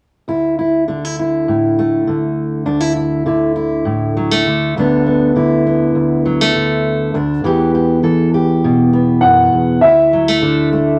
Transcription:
0.28 D2 E4
0.59 E4
0.88 D3 D4
1.05 E4
1.19 E4
1.48 A2
1.79 A3
2.07 D3
2.66 D2 D4
2.80 E4
2.96 E4
3.26 D3 E4
3.56 E4
3.85 A2
4.17 F#3
4.31 A3
4.47 D3
4.77 D2 D3 A3 B3 D4
5.06 B3
5.36 D3 E4
5.67 B3
5.95 D2
6.25 F#3
6.41 A3
6.55 D3
7.14 D2 D4
7.44 E2 E3 B3 G4
7.75 G4
8.03 E3 A4
8.34 G4
8.64 B2
8.93 B3
9.21 F#2 F#5
9.52 E2
9.81 D2 E4 E5
10.13 F#3
10.28 A3
10.42 D3 D4
10.73 A3

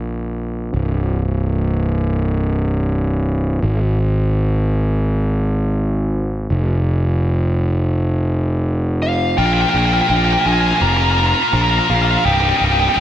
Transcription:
Already playing: A#1
0.74 C1
3.63 G#1
6.50 F1
9.02 F5
9.38 A#1 F4 A#4 G5
9.45 F4 A#4 G5
9.53 F4 A#4 G5
9.61 F4 A#4 G5
9.69 F4 A#4 G5
9.74 A#1 F4 A#4 G5
9.85 F4 A#4 G5
9.92 F4 A#4 G5
10.00 F4 A#4 G5
10.07 A#1 F4 A#4 G5
10.15 F4 A#4 G5
10.23 F4 A#4 G5
10.31 F4 A#4 G5
10.38 F4 A#4 G5
10.46 A#1 F4 A#4 G#5
10.53 F4 A#4 G#5
10.61 F4 A#4 G#5
10.68 F4 A#4 G#5
10.76 F4 A#4 G#5
10.81 F1 A#5
10.85 F4 A#4 A#5
10.93 F4 A#4 A#5
11.00 F4 A#4 A#5
11.09 F4 A#4 A#5
11.17 F4 A#4 A#5
11.24 F4 A#4 A#5
11.31 F4 A#4 A#5
11.40 F4 A#4 A#5
11.48 F4 A#4
11.53 A#1 F4 A#4 A#5
11.61 F4 A#4 A#5
11.70 F4 A#4 A#5
11.78 F4 A#4 A#5
11.86 A#1 F4 A#4 F5
11.94 F4 A#4 F5
12.02 F4 A#4 F5
12.10 F4 A#4 F5
12.17 F4 A#4 F5
12.25 C1 G3 D#4 G5
12.32 G3 D#4 G5
12.40 G3 D#4 G5
12.47 G3 D#4 G5
12.56 G3 D#4 G5
12.61 C1 G3 D#4
12.65 G5
12.71 G3 D#4 G5
12.79 G3 D#4 G5
12.87 G3 D#4 G5
12.95 C1 G3 D#4 G5

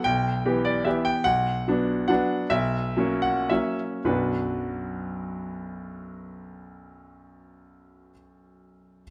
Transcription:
0.04 B1 G5
0.45 E3 B3 G4
0.65 D5
0.85 E3 B3 G4 E5
1.05 G5
1.24 B1 F#5
1.68 F#3 B3 D4
2.08 F#3 B3 D4 F#5
2.50 B1 E5
2.97 F#3 A#3 C#4
3.22 F#5
3.49 F#3 A#3 C#4 E5
4.05 B1 F#2 F#3 B3 D4 F#4 B4

